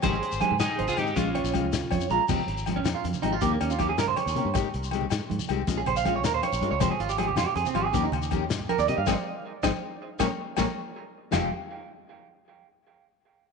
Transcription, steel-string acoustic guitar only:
\new Staff \with { instrumentName = "Steel-string acoustic guitar" } { \time 12/8 \key f \minor \tempo 4. = 106 <ees aes c' g'>8 r8 <ees aes c' g'>8 r4 <ees aes c' g'>8 <aes f'>8 r8 <aes des' f'>8 r4 <aes des' f'>8 | <f aes c' g'>8 r8 <f aes c' g'>8 r4 <f aes c' g'>8 <ees bes des' g'>8 r8 <ees bes des' g'>8 r4 <ees bes des' g'>8 | <ees aes g'>8 r8 <ees aes c' g'>8 r4 <ees aes c' g'>8 <aes des' f'>8 r8 <aes des' f'>8 r4 <aes des' f'>8 | <f aes c' g'>8 r8 <f aes c' g'>8 r4 <f aes c' g'>8 <ees bes des' g'>8 r8 <ees bes des' g'>8 r4 <ees bes des' g'>8 |
<aes c' ees'>8 r4 <aes c' ees'>8 r4 <aes bes des'>8 r8 <aes bes des'>8 r4. | <f aes c' g'>8 r1 r4. | }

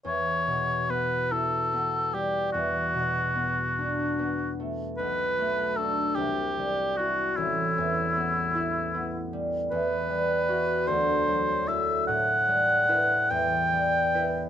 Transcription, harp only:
\new Staff \with { instrumentName = "Harp" } { \time 6/8 \key e \minor \tempo 4. = 50 e,8 b,8 b8 e'8 b8 g8 | e,8 b,8 b8 d'8 b8 a8 | b,,8 a8 <d' fis'>8 c,8 g8 <e' fis'>8 | a,,8 e,8 b8 e'8 b8 g8 |
e,8 g8 <e' fis'>8 d,8 fis8 <e' a'>8 | a,8 g8 <e' b'>8 e,8 g8 <e' b'>8 | }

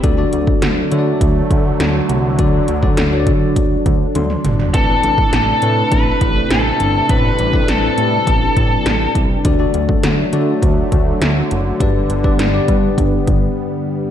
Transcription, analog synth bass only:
\new Staff \with { instrumentName = "Analog synth bass" } { \clef bass \time 4/4 \key d \mixolydian \tempo 4 = 102 d,8 d,8 d,8 d8 d,8 d,8 d,8 c,8 | d,8 d,8 d,8 d8 d,8 d,8 d,8 g,,8 | a,,8 a,,8 a,,8 a,8 a,,8 a,,8 a,,8 g,,8 | a,,8 a,,8 a,,8 a,8 a,,8 a,,8 a,,8 c,8 |
d,8 d,8 d,8 d8 d,8 d,8 d,8 fis,,8 | g,,8 g,,8 g,,8 g,8 g,,8 g,,8 r4 | }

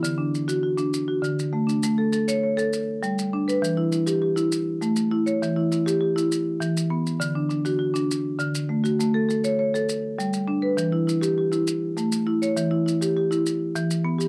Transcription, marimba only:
\new Staff \with { instrumentName = "Marimba" } { \time 12/8 \key a \mixolydian \tempo 4. = 134 << { e'8 d'4. fis'4. fis'4. r8 d'8~ | d'8 a'8 a'4 cis''4. r2 b'8~ | b'8 e'8 e'4 g'4. r2 cis''8~ | cis''8 e'8 e'4 g'4. r2 r8 |
r8 d'8 d'4 fis'4. r2 fis'8~ | fis'8 a'8 a'4 cis''4. r2 b'8~ | b'8 e'8 e'4 g'4. r2 cis''8~ | cis''8 e'8 e'4 g'4. r2 g'8 | } \\ { d4 r8 fis'4 d'4 r8 d4 a4 | a4 r8 cis''4 a'8 r4 g4 d'4 | e4 r8 g'4 e'8 r4 a4 e'4 | e4 r8 g'4 e'4 r8 e4 b4 |
d4 r8 fis'4 d'4 r8 d4 a4 | a4 r8 cis''4 a'8 r4 g4 d'4 | e4 r8 g'4 e'8 r4 a4 e'4 | e4 r8 g'4 e'4 r8 e4 b4 | } >> }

